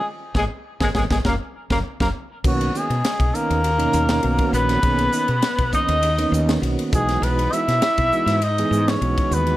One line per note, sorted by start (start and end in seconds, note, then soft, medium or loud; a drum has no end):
0.34 0.47 G#1 medium
0.34 0.45 G#3 medium
0.34 0.45 A#3 medium
0.34 0.45 B3 medium
0.34 0.43 G#4 medium
0.34 kick medium
0.34 snare medium
0.80 0.92 G#1 medium
0.80 0.90 G#3 medium
0.80 0.89 G#3 medium
0.80 0.90 A#3 medium
0.80 0.90 B3 medium
0.80 0.87 G#4 medium
0.80 kick medium
0.80 snare medium
0.95 1.07 G#1 medium
0.95 1.06 G#3 medium
0.95 1.04 G#3 medium
0.95 1.06 A#3 medium
0.95 1.05 B3 medium
0.95 1.03 G#4 medium
0.95 kick medium
0.95 snare medium
1.10 1.21 G#1 medium
1.10 1.20 G#3 medium
1.10 1.19 G#3 medium
1.10 1.20 A#3 medium
1.10 1.21 B3 medium
1.10 1.18 G#4 medium
1.10 kick medium
1.10 snare medium
1.25 1.37 F#1 medium
1.25 1.35 F#3 medium
1.25 1.35 A#3 medium
1.25 1.35 C#4 medium
1.25 1.33 A#4 medium
1.25 kick medium
1.25 snare medium
1.70 1.81 F#1 medium
1.70 1.80 F#3 medium
1.70 1.80 A#3 medium
1.70 1.78 A#3 medium
1.70 1.80 C#4 medium
1.70 1.78 A#4 medium
1.70 kick medium
1.70 snare medium
2.00 2.11 F#1 medium
2.00 2.10 F#3 medium
2.00 2.07 A#3 medium
2.00 2.10 A#3 medium
2.00 2.10 C#4 medium
2.00 2.08 A#4 medium
2.00 kick medium
2.00 snare medium
2.44 2.69 B1 medium
2.44 2.73 D#3 medium
2.44 2.78 F#3 medium
2.44 2.73 A#3 medium
2.44 2.73 B3 medium
2.44 2.73 C#4 medium
2.44 2.73 F#4 loud
2.44 2.79 F#4 medium
2.44 kick loud
2.44 crash medium
2.61 ride medium
2.74 2.89 D#3 medium
2.74 3.36 G#3 medium
2.74 2.90 A#3 medium
2.74 2.89 B3 medium
2.74 2.89 C#4 medium
2.74 2.89 F#4 medium
2.74 3.36 G#4 medium
2.74 hi-hat pedal medium
2.90 3.02 B2 medium
2.90 2.97 C#4 soft
2.90 2.97 F#4 soft
2.90 ride medium
3.05 snare loud
3.05 ride medium
3.19 3.31 B1 medium
3.19 kick medium
3.19 ride medium
3.34 3.63 D#3 medium
3.34 3.63 A#3 medium
3.34 4.54 A#3 medium
3.34 3.63 B3 medium
3.34 3.62 C#4 medium
3.34 3.63 D#4 medium
3.34 4.53 A#4 loud
3.34 hi-hat pedal medium
3.50 3.86 D#2 medium
3.50 ride medium
3.63 3.71 C#4 soft
3.63 3.71 F#4 soft
3.63 ride medium
3.78 4.21 B2 medium
3.78 4.21 D#3 medium
3.78 4.21 A#3 medium
3.78 4.21 C#4 medium
3.78 4.21 D#4 loud
3.78 ride medium
3.93 4.18 D#2 medium
3.93 hi-hat pedal medium
4.09 snare loud
4.09 ride medium
4.23 4.37 B1 medium
4.23 4.80 D#3 medium
4.23 4.80 A#3 medium
4.23 4.80 B3 medium
4.23 4.81 C#4 medium
4.23 4.80 F#4 medium
4.23 ride medium
4.38 kick medium
4.38 ride medium
4.53 4.78 A#1 medium
4.53 5.70 B3 medium
4.53 5.69 B4 loud
4.53 hi-hat pedal medium
4.69 snare soft
4.69 ride medium
4.82 5.07 B1 medium
4.82 5.11 D#3 medium
4.82 5.11 A#3 medium
4.82 5.12 B3 medium
4.82 5.11 C#4 medium
4.82 5.12 G#4 loud
4.82 kick medium
4.82 ride medium
4.99 ride medium
5.12 5.28 D#3 medium
5.12 5.28 A#3 medium
5.12 5.28 B3 medium
5.12 5.28 C#4 medium
5.12 5.28 D#4 medium
5.12 hi-hat pedal medium
5.28 5.40 B2 medium
5.28 5.36 C#4 soft
5.28 5.36 G#4 soft
5.28 ride soft
5.42 snare loud
5.42 ride medium
5.58 5.70 B1 medium
5.58 kick medium
5.58 ride medium
5.73 6.02 D#3 medium
5.73 6.02 A#3 medium
5.73 6.02 B3 medium
5.73 6.02 C#4 medium
5.73 6.01 D#4 medium
5.73 6.62 D#4 medium
5.73 6.62 D#5 loud
5.73 kick medium
5.73 hi-hat pedal medium
5.88 6.24 D#2 medium
5.88 ride medium
6.03 6.11 C#4 soft
6.03 6.11 G#4 soft
6.03 ride medium
6.18 6.60 D#3 loud
6.18 6.60 A#3 medium
6.18 6.60 B3 medium
6.18 6.61 C#4 medium
6.18 6.61 D#4 loud
6.18 ride medium
6.32 6.57 D#2 medium
6.32 hi-hat pedal medium
6.49 snare loud
6.49 ride medium
6.61 6.75 B1 medium
6.61 6.92 D#3 medium
6.61 6.92 A#3 medium
6.61 6.92 B3 medium
6.61 6.92 C#4 medium
6.61 6.92 F#4 medium
6.61 snare soft
6.61 ride medium
6.79 ride medium
6.93 7.17 B1 medium
6.93 7.50 E3 medium
6.93 7.50 G#3 medium
6.93 7.25 G#3 medium
6.93 7.50 B3 medium
6.93 7.50 D#4 medium
6.93 7.50 F#4 medium
6.93 7.25 G#4 loud
6.93 kick loud
6.93 hi-hat pedal medium
7.09 snare soft
7.09 ride medium
7.22 7.46 B1 medium
7.22 7.55 B3 medium
7.22 7.54 B4 loud
7.22 ride medium
7.39 ride medium
7.52 7.67 E3 medium
7.52 7.67 G#3 medium
7.52 7.68 B3 medium
7.52 7.67 D#4 medium
7.52 8.45 E4 medium
7.52 7.68 F#4 medium
7.52 8.45 E5 loud
7.52 hi-hat pedal medium
7.68 7.80 B2 medium
7.68 7.75 D#4 soft
7.68 7.75 F#4 soft
7.68 snare soft
7.68 ride medium
7.82 snare loud
7.82 ride medium
7.98 8.10 B1 medium
7.98 kick medium
7.98 ride medium
8.12 8.41 E3 medium
8.12 8.41 G#3 medium
8.12 8.41 B3 medium
8.12 8.41 D#4 medium
8.12 8.41 F#4 medium
8.12 hi-hat pedal medium
8.26 8.63 G#2 medium
8.26 snare soft
8.26 ride medium
8.42 8.92 D#4 medium
8.42 8.51 D#4 soft
8.42 8.51 G#4 soft
8.42 8.90 D#5 loud
8.42 ride medium
8.58 9.00 E3 medium
8.58 9.00 G#3 medium
8.58 9.00 B3 medium
8.58 9.01 D#4 medium
8.58 9.01 G#4 loud
8.58 ride medium
8.71 8.96 G#2 medium
8.71 hi-hat pedal medium
8.88 9.37 C#4 medium
8.88 9.35 C#5 loud
8.88 snare loud
8.88 ride medium
9.01 9.14 B1 medium
9.01 9.57 E3 medium
9.01 9.57 G#3 medium
9.01 9.57 B3 medium
9.01 9.57 D#4 medium
9.01 9.57 F#4 medium
9.01 ride medium
9.18 kick medium
9.18 ride medium
9.31 9.56 D#2 medium
9.31 9.57 B4 loud
9.31 hi-hat pedal medium
9.36 9.57 B3 medium
9.47 ride soft